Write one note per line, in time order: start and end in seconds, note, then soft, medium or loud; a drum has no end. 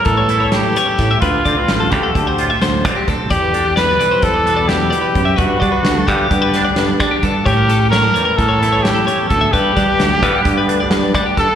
0.00 0.29 A2 medium
0.00 1.26 E3 medium
0.00 1.22 G3 medium
0.00 0.75 C#4 soft
0.00 0.17 A#4 medium
0.05 0.76 A2 medium
0.05 0.52 A4 medium
0.05 kick medium
0.05 closed hi-hat medium
0.17 0.29 C#5 medium
0.29 0.98 E2 medium
0.29 1.26 E4 medium
0.29 0.40 A4 medium
0.29 closed hi-hat medium
0.40 0.64 C#5 medium
0.52 1.18 G4 medium
0.52 snare loud
0.52 closed hi-hat medium
0.64 0.77 A4 medium
0.76 1.20 C#4 medium
0.76 0.88 C#5 medium
0.76 closed hi-hat medium
0.88 1.10 A4 medium
0.99 1.16 A2 medium
0.99 1.19 A2 medium
0.99 kick medium
0.99 snare soft
0.99 closed hi-hat medium
1.11 1.22 E5 medium
1.21 1.39 D2 medium
1.21 3.06 D2 medium
1.21 1.92 F4 medium
1.21 1.45 B4 medium
1.21 kick medium
1.21 closed hi-hat medium
1.45 1.54 D3 medium
1.45 2.84 C4 soft
1.45 1.57 D5 medium
1.45 kick medium
1.45 closed hi-hat medium
1.57 1.80 B4 medium
1.68 1.92 A1 medium
1.68 snare medium
1.68 closed hi-hat medium
1.80 1.92 A4 medium
1.91 2.09 D2 medium
1.91 3.99 D3 medium
1.91 3.28 A3 soft
1.91 2.14 G4 medium
1.91 2.03 B4 medium
1.91 kick medium
1.91 closed hi-hat medium
2.03 2.27 A4 medium
2.15 2.50 D2 medium
2.15 2.63 G4 medium
2.15 kick medium
2.15 closed hi-hat medium
2.27 2.50 C5 medium
2.38 3.28 A2 medium
2.38 3.28 F4 medium
2.38 closed hi-hat medium
2.50 2.61 E5 medium
2.62 2.85 D2 medium
2.62 2.85 C5 medium
2.62 snare loud
2.62 closed hi-hat medium
2.85 2.93 D3 medium
2.85 3.28 C4 medium
2.85 2.96 D5 medium
2.85 kick medium
2.85 closed hi-hat medium
2.96 3.08 G4 medium
3.07 3.31 B1 medium
3.07 3.30 D2 medium
3.07 3.31 A4 medium
3.07 kick medium
3.07 closed hi-hat medium
3.30 3.99 E2 medium
3.30 4.68 E2 medium
3.30 3.74 G4 medium
3.30 3.42 D5 medium
3.30 kick loud
3.30 closed hi-hat medium
3.42 3.54 B4 medium
3.54 4.44 D4 medium
3.54 3.65 A4 medium
3.54 closed hi-hat medium
3.65 3.77 G4 medium
3.76 4.25 B4 loud
3.76 3.88 D5 medium
3.76 snare medium
3.76 closed hi-hat medium
3.89 3.99 B4 medium
3.99 4.17 B1 medium
3.99 5.35 E3 medium
3.99 6.09 G3 medium
3.99 4.11 D5 medium
3.99 closed hi-hat medium
4.11 4.34 C5 medium
4.22 4.92 E2 medium
4.22 4.70 A4 medium
4.22 kick medium
4.22 closed hi-hat medium
4.34 4.45 D5 medium
4.45 5.35 B2 medium
4.45 4.57 D4 medium
4.45 4.56 B4 medium
4.45 closed hi-hat medium
4.57 5.38 E4 soft
4.57 4.80 D5 medium
4.68 4.92 D2 medium
4.68 5.39 G4 medium
4.68 snare loud
4.68 closed hi-hat medium
4.80 4.90 B4 medium
4.90 5.14 E2 medium
4.90 5.01 D5 medium
4.90 closed hi-hat medium
5.01 5.25 B4 medium
5.15 5.38 F#2 soft
5.15 5.33 F#2 medium
5.15 kick medium
5.15 closed hi-hat medium
5.25 5.36 E5 medium
5.36 5.56 G2 medium
5.36 6.54 G2 medium
5.36 6.09 F#4 medium
5.36 5.60 B4 medium
5.36 kick loud
5.36 closed hi-hat medium
5.60 5.70 G3 medium
5.60 6.54 D4 medium
5.60 5.71 D5 medium
5.60 kick medium
5.60 closed hi-hat medium
5.72 5.95 B4 medium
5.83 6.08 D2 medium
5.83 snare loud
5.83 closed hi-hat medium
5.95 6.07 A4 medium
6.07 6.25 G2 medium
6.07 7.46 D3 medium
6.07 7.44 B3 medium
6.07 6.29 G4 medium
6.07 6.19 B4 medium
6.07 kick medium
6.07 closed hi-hat medium
6.19 6.42 G4 medium
6.30 6.66 G2 medium
6.30 6.79 G4 medium
6.30 kick medium
6.30 closed hi-hat medium
6.42 6.64 B4 medium
6.54 7.24 D2 medium
6.54 6.99 D4 medium
6.54 snare soft
6.54 closed hi-hat medium
6.65 6.77 D5 medium
6.76 7.00 G2 medium
6.76 7.00 B4 medium
6.76 snare loud
6.76 closed hi-hat medium
7.00 7.09 G3 medium
7.00 7.43 D4 medium
7.00 7.11 D5 medium
7.00 kick medium
7.00 closed hi-hat medium
7.11 7.23 G4 medium
7.23 7.46 G2 medium
7.23 7.46 A4 medium
7.23 kick medium
7.23 closed hi-hat medium
7.46 8.14 A2 loud
7.46 8.61 A2 medium
7.46 7.89 G4 medium
7.46 7.56 C#5 medium
7.46 kick loud
7.46 closed hi-hat medium
7.57 7.69 A#4 medium
7.69 9.07 C#4 medium
7.69 7.81 A4 medium
7.69 closed hi-hat medium
7.81 7.92 G4 medium
7.91 8.38 A#4 loud
7.91 8.03 C#5 medium
7.91 snare loud
7.91 closed hi-hat medium
8.03 8.14 A4 medium
8.14 8.32 E2 medium
8.14 9.51 E3 medium
8.14 10.22 G3 soft
8.14 8.25 C#5 medium
8.14 closed hi-hat medium
8.25 8.48 A#4 medium
8.37 9.08 A2 medium
8.37 8.84 A4 medium
8.37 kick loud
8.37 closed hi-hat medium
8.49 8.60 C#5 medium
8.60 9.30 E2 medium
8.60 9.51 E4 medium
8.60 8.72 A4 medium
8.60 closed hi-hat medium
8.72 8.94 C#5 medium
8.83 9.29 G4 medium
8.83 snare loud
8.83 closed hi-hat medium
8.94 9.07 A4 medium
9.07 9.51 C#4 medium
9.07 9.19 C#5 medium
9.07 closed hi-hat medium
9.19 9.41 A4 medium
9.29 9.48 D2 medium
9.29 9.51 A2 medium
9.29 9.54 A4 medium
9.29 kick medium
9.29 closed hi-hat medium
9.41 9.53 E5 medium
9.52 9.71 G2 medium
9.52 10.68 G2 medium
9.52 11.14 G4 medium
9.52 9.76 B4 medium
9.52 kick loud
9.52 closed hi-hat medium
9.77 9.85 G3 medium
9.77 10.67 D4 medium
9.77 9.88 D5 medium
9.77 kick medium
9.77 closed hi-hat medium
9.88 10.12 B4 medium
9.99 10.22 D2 medium
9.99 snare loud
9.99 closed hi-hat medium
10.12 10.23 A4 medium
10.22 10.40 G2 medium
10.22 11.55 D3 medium
10.22 11.55 B3 medium
10.22 10.34 B4 medium
10.22 kick medium
10.22 closed hi-hat medium
10.35 10.57 G4 medium
10.45 10.80 G2 medium
10.45 kick medium
10.45 closed hi-hat medium
10.58 10.80 B4 medium
10.68 11.37 D2 medium
10.68 11.13 D4 medium
10.68 closed hi-hat medium
10.80 10.92 D5 medium
10.90 11.14 G2 loud
10.90 11.14 B4 medium
10.90 snare loud
10.90 closed hi-hat medium
11.14 11.23 G3 medium
11.14 11.55 D4 medium
11.14 11.26 D5 medium
11.14 kick medium
11.14 closed hi-hat medium
11.26 11.38 G4 medium
11.37 11.55 G2 medium
11.37 11.46 G2 medium
11.37 11.55 A4 medium
11.37 11.55 A4 loud
11.37 kick medium
11.37 closed hi-hat medium